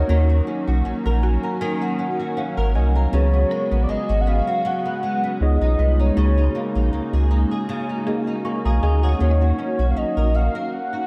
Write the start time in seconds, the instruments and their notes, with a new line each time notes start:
Already playing: analog synth pad F#3 A#3 C#4 D#4 F#4, nylon-string guitar C#4 F#4 A#4, soft synth lead C#5
0.08 sub bass D#2, nylon-string guitar D#3, tine electric piano A#3 C#4 D#4 F#4
0.12 tine electric piano C#5
0.29 nylon-string guitar F#4
0.47 nylon-string guitar C#4
0.67 sub bass B1, nylon-string guitar F#4
0.85 sub bass A#1, nylon-string guitar C#4
1.06 sub bass A#1, nylon-string guitar A#4
1.23 nylon-string guitar F#4, synth pluck F#4, tine electric piano G#5
1.43 nylon-string guitar A#4, tine electric piano A#5
1.61 nylon-string guitar D#3, tine electric piano G#5
1.81 nylon-string guitar F#4
1.99 nylon-string guitar C#4, tine electric piano F#5
2.20 nylon-string guitar F#4
2.37 nylon-string guitar C#4, tine electric piano C#5 F5 F#5
2.57 sub bass G#1, nylon-string guitar A#4
2.75 sub bass C2, nylon-string guitar F#4, tine electric piano D#5 G#5
2.95 nylon-string guitar A#4, tine electric piano F5 A#5
3.11 sub bass C#2, nylon-string guitar C#3, analog synth pad G#3 B3 F#4, tine electric piano B3 C#4 F#4 G#4, soft synth lead C#5
3.16 tine electric piano B4
3.22 tine electric piano C#5
3.34 nylon-string guitar B3
3.51 nylon-string guitar G#3, synth pluck A#4
3.71 sub bass A#1, nylon-string guitar B3
3.83 soft synth lead D5
3.89 sub bass G#1, nylon-string guitar G#3, soft synth lead D#5
4.09 sub bass G#1, nylon-string guitar F#4
4.21 soft synth lead F#5
4.27 nylon-string guitar B3, soft synth lead F5
4.47 nylon-string guitar F#4
4.65 nylon-string guitar C#3, soft synth lead F#5
4.86 nylon-string guitar B3
5.03 nylon-string guitar G#3
5.24 nylon-string guitar B3
5.40 sub bass C#2, tine electric piano B3 D#4 F4 G#4 C#5, analog synth pad B3 C#4 D#4 F4, soft synth lead D#5
5.61 sub bass B1, nylon-string guitar D#4
5.79 sub bass C2, nylon-string guitar B3
6.00 nylon-string guitar D#4, soft synth lead C#5
6.15 sub bass C#2, nylon-string guitar C#3, tine electric piano A#3 D#4 F#4 G#4, analog synth pad A#3 F#4
6.19 tine electric piano C#5
6.38 nylon-string guitar D#4
6.55 nylon-string guitar A#3
6.75 sub bass A#1, nylon-string guitar D#4
6.93 sub bass C#2, nylon-string guitar A#3
7.13 sub bass C#2, nylon-string guitar G#4
7.31 nylon-string guitar D#4
7.51 nylon-string guitar G#4
7.69 nylon-string guitar C#3
7.89 nylon-string guitar D#4
8.06 tine electric piano A#3 D#4 F#4 G#4 D#5, nylon-string guitar A#3, synth pluck G#4
8.27 nylon-string guitar D#4
8.45 nylon-string guitar A#3, tine electric piano G#5 C#6
8.65 sub bass B1, nylon-string guitar G#4, tine electric piano F5 A#5
8.83 sub bass D2, nylon-string guitar D#4, synth pluck G#4, tine electric piano D#5 G#5
9.03 nylon-string guitar G#4, tine electric piano C#5 F#5
9.09 synth pluck C#5
9.19 sub bass D#2, nylon-string guitar D#3, analog synth pad F#3 A#3, tine electric piano A#3 C#4 D#4 F#4, soft synth lead C#5
9.23 tine electric piano C#5
9.31 synth pluck D#5
9.41 nylon-string guitar F#4
9.58 nylon-string guitar C#4
9.79 sub bass B1, nylon-string guitar F#4
9.91 soft synth lead F5
9.96 sub bass A#1, nylon-string guitar C#4, soft synth lead D#5
10.17 sub bass A#1, nylon-string guitar A#4
10.34 nylon-string guitar F#4, soft synth lead F5
10.55 nylon-string guitar A#4
10.73 soft synth lead F#5
10.93 nylon-string guitar F#4